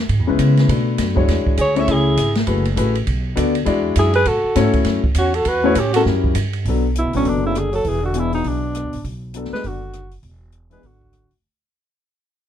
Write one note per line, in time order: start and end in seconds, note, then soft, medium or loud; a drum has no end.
0.09 0.19 G#2 medium
0.09 kick soft
0.09 ride medium
0.19 0.28 E2 medium
0.27 0.38 C#2 medium
0.27 0.67 G#3 medium
0.27 0.67 B3 medium
0.27 0.66 C#4 medium
0.27 0.67 E4 medium
0.27 0.67 B4 medium
0.39 0.68 C#3 medium
0.39 kick soft
0.39 hi-hat pedal medium
0.39 ride medium
0.57 snare soft
0.57 ride soft
0.68 0.98 B2 medium
0.68 1.13 A3 medium
0.68 1.13 B3 soft
0.68 1.13 D4 soft
0.68 1.13 F#4 soft
0.68 1.13 B4 medium
0.68 kick soft
0.68 ride medium
0.98 1.28 F#2 medium
0.98 kick soft
0.98 snare soft
0.98 hi-hat pedal medium
0.98 ride medium
1.15 1.55 G#3 medium
1.15 1.55 D4 medium
1.15 1.56 E4 medium
1.15 1.56 F#4 medium
1.15 1.56 C#5 medium
1.15 kick medium
1.28 1.45 E2 medium
1.28 kick soft
1.28 snare soft
1.28 ride medium
1.46 muted upright bass stroke soft
1.46 kick medium
1.57 1.87 D2 medium
1.57 1.77 G#4 medium
1.57 1.81 C#5 medium
1.57 hi-hat pedal medium
1.57 ride medium
1.75 2.15 A3 medium
1.75 2.15 C#4 medium
1.75 2.16 E4 medium
1.75 2.16 G#4 medium
1.75 1.91 C#5 medium
1.75 2.16 C#5 medium
1.75 1.94 E5 medium
1.75 ride soft
1.88 2.17 C#2 medium
1.88 2.37 E4 medium
1.88 kick soft
1.88 ride medium
1.92 2.38 G#4 medium
2.17 2.47 G#1 medium
2.17 kick soft
2.17 hi-hat pedal medium
2.17 ride medium
2.35 snare medium
2.35 ride soft
2.47 2.76 F#1 medium
2.47 2.63 A3 medium
2.47 2.64 E4 soft
2.47 2.64 F#4 medium
2.47 2.64 G#4 medium
2.47 2.64 B4 medium
2.47 kick soft
2.47 ride medium
2.65 ride soft
2.76 3.06 A1 medium
2.76 2.93 A3 medium
2.76 2.94 E4 medium
2.76 2.93 F#4 medium
2.76 2.94 G#4 medium
2.76 2.94 B4 medium
2.76 kick soft
2.76 hi-hat pedal medium
2.76 ride medium
2.95 ride soft
3.07 3.36 B1 medium
3.07 kick soft
3.07 ride medium
3.36 3.66 D2 medium
3.36 3.53 B3 medium
3.36 3.53 D4 medium
3.36 3.53 F#4 medium
3.36 3.53 A4 medium
3.36 3.54 D5 medium
3.36 kick soft
3.36 hi-hat pedal medium
3.36 ride medium
3.55 ride soft
3.65 3.96 E2 medium
3.65 4.10 G#3 medium
3.65 4.11 D4 medium
3.65 4.11 E4 medium
3.65 4.11 F#4 medium
3.65 4.11 D5 medium
3.65 kick soft
3.65 ride medium
3.96 4.25 F#2 medium
3.96 4.14 E4 medium
3.96 4.15 G#4 medium
3.96 kick soft
3.96 hi-hat pedal medium
3.96 ride medium
4.13 4.28 G#4 medium
4.13 4.30 B4 loud
4.13 ride soft
4.25 4.43 A2 medium
4.25 4.75 F#4 medium
4.25 4.75 A4 medium
4.25 kick soft
4.25 ride medium
4.44 muted upright bass stroke soft
4.55 4.73 G#2 medium
4.55 5.00 A3 medium
4.55 5.00 C#4 medium
4.55 5.01 E4 medium
4.55 5.01 F#4 medium
4.55 5.01 C#5 medium
4.55 kick soft
4.55 snare soft
4.55 hi-hat pedal medium
4.55 ride medium
4.73 muted upright bass stroke soft
4.73 kick medium
4.73 ride soft
4.84 5.03 F#2 medium
4.84 snare soft
4.84 ride medium
5.04 muted upright bass stroke soft
5.04 kick medium
5.15 5.45 E2 medium
5.15 5.36 C#4 medium
5.15 5.37 F#4 medium
5.15 kick soft
5.15 hi-hat pedal medium
5.15 ride medium
5.34 5.47 F#4 medium
5.34 5.50 A4 medium
5.34 ride soft
5.45 5.75 E2 medium
5.45 5.77 F#4 medium
5.45 5.80 B4 medium
5.45 kick soft
5.45 ride medium
5.64 5.75 A3 medium
5.64 5.74 C#4 medium
5.64 5.75 E4 medium
5.64 5.75 F#4 medium
5.64 5.75 C#5 medium
5.75 6.05 A2 medium
5.75 5.92 C#4 medium
5.75 5.96 G4 medium
5.75 kick soft
5.75 hi-hat pedal medium
5.75 ride medium
5.93 6.34 G3 medium
5.93 6.34 C#4 medium
5.93 6.35 E4 medium
5.93 6.04 F#4 medium
5.93 6.02 A4 medium
5.93 ride medium
5.97 6.35 F#4 medium
5.97 6.35 A#4 medium
6.05 6.34 F#2 medium
6.05 kick soft
6.05 snare soft
6.24 kick medium
6.35 6.64 G2 medium
6.35 kick soft
6.35 hi-hat pedal medium
6.35 ride medium
6.53 ride soft
6.65 7.02 B1 medium
6.65 6.83 F#3 medium
6.65 6.84 B3 medium
6.65 6.83 D4 medium
6.65 6.84 A4 medium
6.65 kick soft
6.65 open hi-hat soft
6.95 7.13 B2 medium
6.95 7.14 E4 medium
6.95 closed hi-hat medium
7.04 7.13 D2 medium
7.13 7.24 A#1 medium
7.13 7.28 A2 medium
7.13 7.53 F#3 medium
7.13 7.53 B3 medium
7.13 7.30 C#4 medium
7.13 7.53 D4 medium
7.13 7.54 A4 medium
7.13 open hi-hat soft
7.25 7.82 F#1 medium
7.25 7.43 B2 medium
7.25 7.45 D4 medium
7.25 kick soft
7.25 open hi-hat soft
7.43 7.57 C#3 medium
7.43 7.59 E4 medium
7.55 7.71 D3 medium
7.55 7.74 G#4 medium
7.55 cross-stick medium
7.55 closed hi-hat medium
7.71 7.87 F#3 medium
7.71 7.90 A4 medium
7.71 open hi-hat soft
7.84 8.42 E1 medium
7.84 8.01 E3 medium
7.84 kick soft
7.84 open hi-hat soft
7.89 8.05 G#4 medium
8.02 8.18 D3 medium
8.02 8.20 F#4 medium
8.14 8.33 B2 medium
8.14 8.59 E3 medium
8.14 8.59 B3 medium
8.14 8.59 D4 medium
8.14 8.60 G#4 medium
8.14 closed hi-hat medium
8.19 8.34 E4 medium
8.33 8.45 B2 medium
8.33 8.50 D#4 medium
8.33 open hi-hat soft
8.44 8.82 B1 medium
8.44 9.05 B2 medium
8.44 kick soft
8.44 open hi-hat soft
8.48 9.06 D4 medium
8.75 cross-stick medium
8.75 closed hi-hat medium
8.83 8.93 D2 medium
8.93 9.04 A1 medium
8.93 open hi-hat soft
9.04 9.49 B1 medium
9.04 kick soft
9.04 open hi-hat soft
9.34 9.79 F#3 medium
9.34 9.79 B3 medium
9.34 9.79 D4 medium
9.34 9.80 A4 medium
9.34 closed hi-hat soft
9.45 snare soft
9.52 9.67 G#3 medium
9.52 9.69 B4 medium
9.52 muted upright bass stroke soft
9.52 snare soft
9.64 10.21 F#1 medium
9.64 10.13 D3 medium
9.64 10.14 F#4 medium
9.64 kick soft
9.64 open hi-hat soft
9.93 cross-stick medium
9.93 closed hi-hat medium
10.11 open hi-hat soft
10.23 10.80 E1 medium
10.23 kick soft
10.23 open hi-hat soft
10.52 closed hi-hat soft
10.70 10.81 E3 medium
10.70 10.85 G#3 medium
10.70 10.82 B3 medium
10.70 10.82 D4 medium
10.70 10.83 G#4 medium
10.70 10.88 B4 medium
10.70 open hi-hat soft
10.83 11.28 G#1 medium
10.83 11.31 D3 medium
10.83 11.33 F#4 medium
10.83 kick soft
10.83 open hi-hat soft
11.01 kick soft
11.13 cross-stick medium
11.13 closed hi-hat soft
11.31 open hi-hat soft